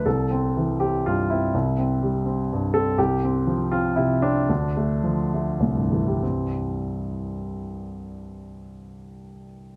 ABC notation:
X:1
M:3/4
L:1/8
Q:1/4=113
K:C
V:1 name="Grand piano"
A3 G F E- | E4 z A | G3 F E D- | D4 z2 |
[C,,G,,E,G,C]6- | [C,,G,,E,G,C]6 |]
V:2 name="Grand piano" clef=bass
C,, C E, C G,, C | C,, C G, C G,, C | C,, C F, C C, C | D,, A, F, A, A,, A, |
z6 | z6 |]